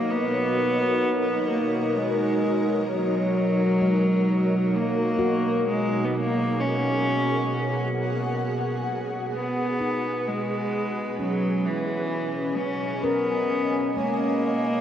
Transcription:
0.00 2.85 B2 medium
0.00 0.13 A#3 loud
0.00 5.64 D#4 medium
0.00 2.86 F#4 medium
0.00 6.75 F#4 medium
0.00 8.40 A#4 medium
0.00 6.74 C#5 medium
0.00 6.75 D#5 medium
0.11 1.49 B3 loud
1.50 1.98 A#3 medium
1.96 2.91 G#3 medium
2.87 14.81 B2 medium
2.87 4.78 F#3 loud
2.87 14.81 F#4 medium
3.81 5.37 G#3 medium
4.76 5.66 A#3 loud
5.19 8.15 F#3 medium
5.19 8.15 F#4 medium
5.66 6.06 G#3 loud
5.66 12.20 G#4 medium
6.04 6.15 B3 medium
6.14 6.61 A#3 loud
6.60 7.96 C#4 loud
6.89 9.52 F#5 medium
9.19 12.29 B4 medium
9.35 10.29 B3 loud
9.80 11.37 D#4 soft
10.28 11.19 G#3 medium
11.18 11.66 F#3 medium
11.18 14.81 C#4 medium
11.18 14.15 C#4 soft
11.65 12.58 E3 medium
11.74 14.81 C#5 medium
12.29 14.81 D#5 medium
12.45 14.81 G#5 medium
12.57 13.05 C#4 medium
13.03 13.97 B3 medium
13.03 14.81 A#4 medium
13.96 14.81 G#3 medium
13.96 14.81 A#3 loud
13.96 14.81 D#4 medium
14.36 14.81 A#4 medium
14.50 14.81 F#4 medium

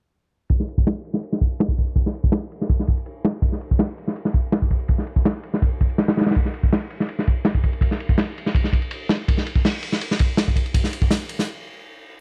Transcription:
0.50 kick loud
0.50 ride medium
0.60 snare soft
0.68 ride medium
0.78 kick medium
0.87 snare loud
0.87 open hi-hat medium
1.05 ride medium
1.14 snare medium
1.23 ride medium
1.32 snare soft
1.41 kick medium
1.41 ride medium
1.60 snare loud
1.60 ride medium
1.69 kick loud
1.78 kick medium
1.78 ride medium
1.87 ride soft
1.96 kick loud
1.96 ride medium
2.06 snare soft
2.14 ride medium
2.24 kick medium
2.32 snare loud
2.32 ride medium
2.52 ride medium
2.61 snare soft
2.69 kick loud
2.69 ride medium
2.79 snare soft
2.87 kick medium
2.87 ride medium
2.97 ride soft
3.06 ride medium
3.24 snare loud
3.24 ride medium
3.42 kick loud
3.42 ride medium
3.52 snare soft
3.61 ride medium
3.71 kick medium
3.78 snare loud
3.78 open hi-hat medium
3.98 ride medium
4.08 snare soft
4.16 ride medium
4.25 snare soft
4.33 kick medium
4.33 ride medium
4.52 snare loud
4.52 ride medium
4.62 kick loud
4.71 kick medium
4.71 ride medium
4.79 ride soft
4.88 kick loud
4.88 ride medium
4.98 snare soft
5.07 ride medium
5.16 kick medium
5.25 snare loud
5.25 ride medium
5.43 ride medium
5.54 snare soft
5.62 kick loud
5.62 ride medium
5.81 kick medium
5.81 ride medium
5.90 ride soft
5.98 snare medium
5.98 open hi-hat medium
6.08 snare loud
6.08 open hi-hat medium
6.17 snare medium
6.17 open hi-hat medium
6.21 snare medium
6.21 open hi-hat medium
6.26 snare medium
6.26 open hi-hat medium
6.31 snare medium
6.31 open hi-hat medium
6.35 kick loud
6.35 ride medium
6.45 snare soft
6.54 ride medium
6.63 kick medium
6.72 snare loud
6.72 open hi-hat medium
6.90 ride medium
7.00 snare medium
7.09 ride medium
7.19 snare soft
7.27 kick medium
7.27 ride medium
7.45 snare loud
7.45 ride medium
7.55 kick loud
7.63 kick medium
7.63 ride medium
7.73 ride soft
7.81 kick medium
7.81 ride medium
7.91 snare soft
8.00 ride medium
8.09 kick medium
8.18 snare loud
8.18 ride medium
8.38 ride medium
8.46 snare soft
8.55 kick loud
8.55 ride medium
8.64 snare soft
8.73 kick medium
8.73 ride medium
8.82 ride soft
8.91 ride medium
9.09 snare loud
9.09 ride medium
9.28 kick loud
9.28 ride medium
9.38 snare soft
9.46 ride medium
9.55 kick medium
9.65 snare loud
9.65 open hi-hat medium
9.83 ride medium
9.92 snare soft
10.01 ride medium
10.11 snare soft
10.19 kick loud
10.19 ride medium
10.37 snare loud
10.37 ride medium
10.48 kick medium
10.56 kick medium
10.56 ride medium
10.66 ride soft
10.74 kick loud
10.74 ride medium
10.84 snare soft
10.93 ride medium
11.02 kick loud
11.11 snare loud
11.11 ride medium
11.29 ride medium
11.39 snare soft

